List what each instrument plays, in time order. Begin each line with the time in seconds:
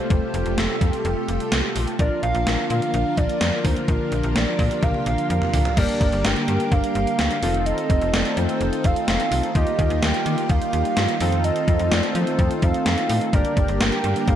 Already playing: string machine C3 G3 A3, analog polysynth F4 G4 A4
0.10 fm bass F1, string machine G4, soft synth lead C5, kick, closed hi-hat
0.34 fm bass F1, closed hi-hat
0.46 fm bass F1, closed hi-hat
0.58 fm bass F1, soft synth lead A4, snare, closed hi-hat
0.81 fm bass F2, kick, closed hi-hat
0.93 closed hi-hat
1.05 fm bass F1, soft synth lead A4, closed hi-hat
1.28 fm bass F1, closed hi-hat
1.40 closed hi-hat
1.52 fm bass C2, snare, closed hi-hat
1.76 fm bass A#1, open hi-hat
1.87 closed hi-hat
1.99 fm bass A#1, string machine D3 F3 A#3 F4, analog polysynth D4 F4 A#4, soft synth lead D5, kick, closed hi-hat
2.23 fm bass A#1, soft synth lead F5, closed hi-hat
2.35 fm bass A#1, closed hi-hat
2.46 fm bass A#1, snare, closed hi-hat
2.70 fm bass A#2, soft synth lead F5, closed hi-hat
2.82 closed hi-hat
2.94 fm bass A#1, closed hi-hat
3.17 fm bass A#1, soft synth lead D5, kick, closed hi-hat
3.29 closed hi-hat
3.41 fm bass F2, snare, closed hi-hat
3.64 fm bass D#2, soft synth lead C5, kick, open hi-hat
3.77 closed hi-hat
3.88 fm bass A#1, string machine G4, soft synth lead A#4, kick, closed hi-hat
4.12 fm bass A#1, closed hi-hat
4.23 fm bass A#1, closed hi-hat
4.35 fm bass A#1, soft synth lead D5, snare, closed hi-hat
4.59 fm bass A#2, kick, open hi-hat
4.71 closed hi-hat
4.83 fm bass A#1, soft synth lead F5, kick, closed hi-hat, high tom
4.94 high tom
5.06 fm bass A#1, soft synth lead F5, closed hi-hat
5.18 closed hi-hat
5.30 fm bass F2, soft synth lead F5, closed hi-hat
5.42 mid tom
5.54 fm bass D2, floor tom, open hi-hat
5.65 closed hi-hat, floor tom
5.77 fm bass G1, string machine D3 G3 A#3 G4, analog polysynth A#3 D4 G4 A#4, soft synth lead D5, kick, closed hi-hat, crash
5.89 closed hi-hat
6.01 fm bass G1, kick, closed hi-hat
6.12 fm bass G1, closed hi-hat
6.24 fm bass G1, soft synth lead G5, snare, closed hi-hat
6.36 closed hi-hat
6.48 fm bass G2, closed hi-hat
6.60 closed hi-hat
6.72 fm bass G1, soft synth lead F5, kick, closed hi-hat
6.84 closed hi-hat
6.95 fm bass G1, closed hi-hat
7.07 closed hi-hat
7.19 fm bass D2, snare, closed hi-hat
7.31 closed hi-hat
7.42 fm bass F1, string machine D#3 A3 C4 F4, analog polysynth C4 D#4 F4 A4, open hi-hat
7.54 closed hi-hat
7.66 soft synth lead D#5, closed hi-hat
7.78 closed hi-hat
7.90 fm bass F1, kick, closed hi-hat
8.02 fm bass F1, closed hi-hat
8.13 fm bass F1, soft synth lead D5, snare, closed hi-hat
8.25 closed hi-hat
8.37 fm bass F2, soft synth lead C5, closed hi-hat
8.49 closed hi-hat
8.61 fm bass F1, closed hi-hat
8.73 closed hi-hat
8.84 fm bass F1, soft synth lead F5, kick, closed hi-hat
8.96 closed hi-hat
9.08 fm bass F1, soft synth lead F5, snare, closed hi-hat
9.20 closed hi-hat
9.31 fm bass C2, open hi-hat
9.43 closed hi-hat
9.55 fm bass D#2, string machine G3 A#3, analog polysynth A#3 D#4 F4 G4, soft synth lead D#5, kick, closed hi-hat
9.67 closed hi-hat
9.79 fm bass D#2, kick, closed hi-hat
9.90 fm bass D#2, closed hi-hat
10.02 fm bass D#2, soft synth lead G5, snare, closed hi-hat
10.14 closed hi-hat
10.26 fm bass D#3, closed hi-hat
10.38 closed hi-hat
10.49 fm bass D#2, soft synth lead F5, kick, closed hi-hat
10.62 closed hi-hat
10.73 fm bass D#2, closed hi-hat
10.85 closed hi-hat
10.97 fm bass G2, snare, closed hi-hat
11.09 closed hi-hat
11.20 fm bass F2, string machine A3 C4, analog polysynth C4 D#4 F4 A4, open hi-hat
11.32 closed hi-hat
11.44 soft synth lead D#5, closed hi-hat
11.56 closed hi-hat
11.68 fm bass F2, kick, closed hi-hat
11.79 fm bass F2, closed hi-hat
11.91 fm bass F2, soft synth lead D5, snare, closed hi-hat
12.03 closed hi-hat
12.15 fm bass F3, soft synth lead C5, closed hi-hat
12.27 closed hi-hat
12.39 fm bass F2, kick, closed hi-hat
12.51 closed hi-hat
12.62 fm bass F2, soft synth lead F5, kick, closed hi-hat
12.74 closed hi-hat
12.86 fm bass F2, soft synth lead F5, snare, closed hi-hat
12.98 closed hi-hat
13.09 fm bass A2, open hi-hat
13.21 closed hi-hat
13.33 fm bass G1, string machine D3 G3 A#3 G4, analog polysynth A#3 D4 G4 A#4, soft synth lead D5, kick, closed hi-hat
13.45 closed hi-hat
13.57 fm bass G1, kick, closed hi-hat
13.68 fm bass G1, closed hi-hat
13.80 fm bass G1, soft synth lead G5, snare, closed hi-hat
13.92 closed hi-hat
14.04 fm bass G2, closed hi-hat
14.16 closed hi-hat
14.28 fm bass G1, soft synth lead F5, kick, closed hi-hat